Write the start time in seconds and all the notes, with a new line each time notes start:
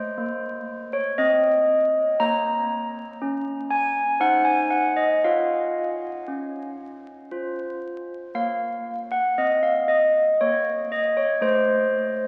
Already playing: C5 D#5
0.18 A#3
0.93 C#5
1.18 C4 D#5
2.19 A#3 C#5 A#5
3.22 C#4
3.71 G#5
4.20 D#4 C5 F#5
4.45 G#5
4.70 F#5
4.96 D#5
5.24 F4 C#5 F5
6.28 C#4
7.32 F4 C5
8.35 A#3 C#5 F5
9.12 F#5
9.38 C4 D#5
9.63 F5
9.88 D#5
10.41 A#3 C#5
10.92 D#5
11.17 C#5
11.41 A3 C5 D#5